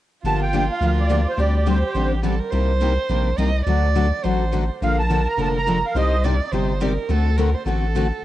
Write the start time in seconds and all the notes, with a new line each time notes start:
0.24 G1 D3 F3 A#3 D4 F4 G4 A5
0.43 G5
0.53 D3 F3 A#3 D4 G4
0.72 F5
0.80 D2 D3 F3 A#3 D4 G4 F5
1.00 D5
1.09 D3 F3 A#3 D4 G4
1.29 C5
1.37 D2 D3 G3 C4 D4 G4 D5
1.56 D5
1.66 D3 G3 C4 D4 G4 C5
1.86 C5
1.94 A1 D3 G3 C4 D4 G4
2.23 D3 G3 C4 D4 G4 A4
2.39 A#4
2.51 C2 C3 G3 A#3 D#4 G4 C5
2.81 C3 G3 A#3 D#4 G4
3.09 A#1 C3 G3 A#3 D#4 G4
3.38 C2 C3 G3 A#3 D#4 G4 D#5
3.65 D2 D3 F#3 A3 D4 F#4 A4 D5
3.95 D3 F#3 A3 D4 F#4 A4
4.23 A1 D3 F#3 A3 D4 F#4 A4 C5
4.52 D3 F#3 A3 D4 F#4 A4
4.81 A#1 D3 F3 A#3 D4 A4 A#4 F5
4.99 A5
5.10 D3 F3 A#3 D4 A4
5.29 A#5
5.37 F1 D3 F3 A#3 D4 A4
5.42 A5
5.57 A#5
5.66 D3 F3 A#3 D4 A4
5.86 F5
5.94 C2 C3 G3 C4 D#4 G4 C5 D5 D#5
6.24 C3 G3 C4 D#4 G4 D5
6.52 G1 C3 G3 C4 D#4 G4 C5 D5
6.81 C3 G3 C4 D#4 G4 A#4 D5
7.09 D2 D3 A3 C4 F#4 A4
7.37 D3 A3 C4 F#4 A4 A#4
7.54 C5
7.65 A1 D3 A3 C4 F#4 A4
7.95 D3 A3 C4 F#4 A4